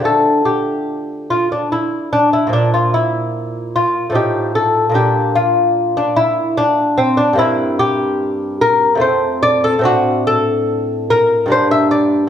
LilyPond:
<<
  \new Staff \with { instrumentName = "Lute" } { \time 3/4 \key d \minor \tempo 4 = 73 a'8 g'4 f'16 d'16 e'8 d'16 e'16 | d'16 f'16 e'4 f'8 g'8 a'8 | g'8 f'8. d'16 e'8 d'8 c'16 d'16 | e'8 g'4 bes'8 c''8 d''16 a'16 |
fis'8 a'4 bes'8 c''16 e''16 d''8 | }
  \new Staff \with { instrumentName = "Lute" } { \time 3/4 \key d \minor <d f a>2. | <bes, f>2 <a, f ees'>4 | <bes, bes d'>2. | <g, bes c'>2 <f, a c'>4 |
<a, c' d'>2 <g, bes d'>4 | }
>>